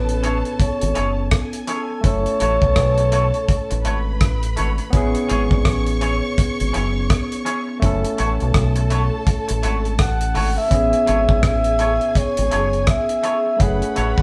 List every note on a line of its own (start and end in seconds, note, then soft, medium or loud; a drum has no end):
0.00 0.41 A1 medium
0.00 1.99 B3 medium
0.00 2.00 C#4 medium
0.00 2.01 E4 medium
0.00 1.28 A4 medium
0.00 2.02 A4 medium
0.00 0.60 B4 medium
0.00 1.28 A5 medium
0.09 closed hi-hat medium
0.23 0.35 C#4 medium
0.23 0.35 E4 medium
0.23 0.36 G#4 medium
0.23 0.36 C#5 loud
0.23 closed hi-hat medium
0.45 closed hi-hat soft
0.60 1.29 C#5 medium
0.60 kick loud
0.60 closed hi-hat loud
0.81 0.95 G#1 medium
0.81 closed hi-hat medium
0.95 1.30 F#1 medium
0.95 1.07 C#4 medium
0.95 1.08 E4 medium
0.95 1.08 G#4 medium
0.95 1.08 C#5 medium
0.95 closed hi-hat medium
1.31 2.03 A4 medium
1.31 2.03 G#5 medium
1.31 kick loud
1.31 cross-stick loud
1.31 closed hi-hat medium
1.53 closed hi-hat medium
1.67 1.80 C#4 medium
1.67 1.80 E4 medium
1.67 1.80 G#4 medium
1.67 2.07 A4 loud
1.67 1.80 C#5 medium
1.67 closed hi-hat medium
1.89 muted clean electric guitar stroke soft
2.01 2.25 F#1 loud
2.01 4.88 A3 medium
2.01 4.89 C#4 medium
2.01 4.90 E4 medium
2.01 3.81 A4 medium
2.01 3.81 A5 medium
2.01 kick loud
2.01 closed hi-hat loud
2.05 4.91 A4 medium
2.05 4.21 C#5 loud
2.26 closed hi-hat medium
2.40 2.61 A1 medium
2.40 2.52 A3 medium
2.40 2.52 E4 medium
2.40 2.53 F#4 medium
2.40 2.53 C#5 medium
2.40 closed hi-hat medium
2.62 2.76 B1 medium
2.62 kick loud
2.76 3.30 B1 loud
2.76 kick loud
2.76 cross-stick loud
2.76 closed hi-hat medium
2.98 muted clean electric guitar stroke soft
2.98 closed hi-hat medium
3.12 3.24 A3 medium
3.12 3.25 E4 medium
3.12 3.25 F#4 loud
3.12 3.25 C#5 medium
3.12 closed hi-hat medium
3.34 closed hi-hat soft
3.49 kick loud
3.49 closed hi-hat medium
3.70 3.84 A1 medium
3.70 muted clean electric guitar stroke soft
3.70 closed hi-hat medium
3.85 4.19 G#1 medium
3.85 3.97 A3 medium
3.85 3.97 E4 medium
3.85 3.97 F#4 medium
3.85 4.91 B4 medium
3.85 3.98 C#5 loud
3.85 4.91 B5 medium
3.85 closed hi-hat medium
4.21 4.55 A1 medium
4.21 kick loud
4.21 cross-stick loud
4.21 closed hi-hat loud
4.43 closed hi-hat medium
4.56 4.78 G#1 medium
4.56 4.69 A3 medium
4.56 4.69 E4 medium
4.56 4.69 F#4 loud
4.56 4.70 C#5 medium
4.56 closed hi-hat medium
4.78 muted clean electric guitar stroke medium
4.78 closed hi-hat soft
4.90 5.14 A1 loud
4.90 7.77 B3 medium
4.90 7.78 C#4 medium
4.90 7.79 E4 medium
4.90 7.78 C#5 medium
4.90 7.78 C#6 loud
4.90 kick loud
4.90 closed hi-hat loud
4.97 7.80 G#4 loud
5.15 closed hi-hat medium
5.29 5.50 G#1 medium
5.29 5.41 C#4 medium
5.29 5.41 E4 medium
5.29 5.42 G#4 loud
5.29 5.42 C#5 medium
5.29 closed hi-hat medium
5.51 5.65 G#1 medium
5.51 kick loud
5.65 6.20 A1 medium
5.65 kick loud
5.65 cross-stick loud
5.65 closed hi-hat medium
5.87 closed hi-hat medium
6.01 6.13 C#4 medium
6.01 6.14 E4 medium
6.01 6.14 G#4 medium
6.01 6.14 C#5 loud
6.01 closed hi-hat medium
6.38 kick loud
6.38 closed hi-hat loud
6.60 6.74 G#1 medium
6.60 closed hi-hat medium
6.73 7.08 F#1 medium
6.73 6.85 C#4 medium
6.73 6.86 E4 loud
6.73 6.86 G#4 medium
6.73 6.86 C#5 medium
6.73 closed hi-hat medium
7.10 kick loud
7.10 cross-stick loud
7.10 closed hi-hat loud
7.32 closed hi-hat medium
7.45 7.58 C#4 medium
7.45 7.58 E4 medium
7.45 7.58 G#4 loud
7.45 7.58 C#5 medium
7.45 closed hi-hat medium
7.67 muted clean electric guitar stroke soft
7.80 8.03 F#1 loud
7.80 10.66 A3 medium
7.80 10.67 C#4 medium
7.80 10.67 A4 medium
7.80 10.67 A5 medium
7.80 kick loud
7.80 closed hi-hat medium
7.84 10.68 E4 medium
7.84 10.69 A4 loud
8.04 closed hi-hat medium
8.18 8.39 A1 loud
8.18 8.30 A3 medium
8.18 8.30 E4 medium
8.18 8.31 F#4 medium
8.18 8.31 C#5 medium
8.18 closed hi-hat medium
8.40 8.54 B1 medium
8.40 closed hi-hat soft
8.54 9.09 B1 loud
8.54 kick loud
8.54 cross-stick loud
8.54 closed hi-hat medium
8.76 muted clean electric guitar stroke soft
8.76 closed hi-hat medium
8.90 9.02 A3 medium
8.90 9.03 E4 medium
8.90 9.03 F#4 loud
8.90 9.03 C#5 medium
8.90 closed hi-hat medium
9.27 kick loud
9.27 closed hi-hat medium
9.48 9.63 A1 medium
9.48 muted clean electric guitar stroke soft
9.48 closed hi-hat medium
9.63 9.97 G#1 medium
9.63 9.75 A3 medium
9.63 9.75 E4 loud
9.63 9.75 F#4 loud
9.63 9.76 C#5 loud
9.63 closed hi-hat medium
9.85 closed hi-hat soft
9.99 10.33 A1 medium
9.99 10.60 F#5 loud
9.99 kick loud
9.99 cross-stick loud
9.99 closed hi-hat loud
10.21 closed hi-hat medium
10.35 10.56 G#1 medium
10.35 10.47 A3 medium
10.35 10.47 E4 medium
10.35 10.47 F#4 medium
10.35 10.48 C#5 medium
10.35 open hi-hat medium
10.57 11.44 E5 loud
10.57 muted clean electric guitar stroke soft
10.68 10.92 A1 loud
10.68 13.55 B3 medium
10.68 13.56 C#4 medium
10.68 13.56 G#4 medium
10.68 13.56 G#5 loud
10.68 kick loud
10.68 closed hi-hat loud
10.72 13.57 E4 medium
10.72 13.58 G#4 medium
10.93 closed hi-hat medium
11.07 11.28 G#1 medium
11.07 11.19 A3 medium
11.07 11.19 E4 medium
11.07 11.19 G#4 medium
11.07 11.20 C#5 medium
11.07 closed hi-hat medium
11.29 11.43 G#1 medium
11.29 kick loud
11.43 11.97 A1 medium
11.43 12.19 E5 loud
11.43 kick loud
11.43 cross-stick loud
11.43 closed hi-hat medium
11.64 closed hi-hat medium
11.79 11.91 A3 medium
11.79 11.91 E4 medium
11.79 11.92 G#4 medium
11.79 11.92 C#5 loud
11.79 closed hi-hat medium
12.01 closed hi-hat soft
12.15 12.91 C#5 medium
12.15 kick loud
12.15 closed hi-hat loud
12.37 12.51 G#1 medium
12.37 closed hi-hat medium
12.51 12.86 F#1 medium
12.51 12.63 A3 medium
12.51 12.64 E4 medium
12.51 12.64 G#4 loud
12.51 12.64 C#5 loud
12.51 closed hi-hat medium
12.73 closed hi-hat soft
12.87 13.63 E5 loud
12.87 kick loud
12.87 cross-stick loud
12.87 closed hi-hat loud
13.09 closed hi-hat medium
13.23 13.36 A3 medium
13.23 13.36 E4 medium
13.23 13.36 G#4 medium
13.23 13.36 C#5 loud
13.23 closed hi-hat medium
13.45 muted clean electric guitar stroke soft
13.57 14.22 A3 medium
13.57 14.22 C#4 medium
13.57 14.22 E4 medium
13.57 14.22 B4 medium
13.57 14.22 B5 medium
13.57 kick loud
13.57 closed hi-hat loud
13.61 13.81 F#1 loud
13.61 14.22 G#4 medium
13.61 14.22 F#5 loud
13.82 closed hi-hat medium
13.96 14.17 A1 medium
13.96 14.08 A3 medium
13.96 14.08 E4 medium
13.96 14.09 F#4 medium
13.96 14.09 C#5 medium
13.96 closed hi-hat medium
14.18 14.22 B1 medium
14.18 kick loud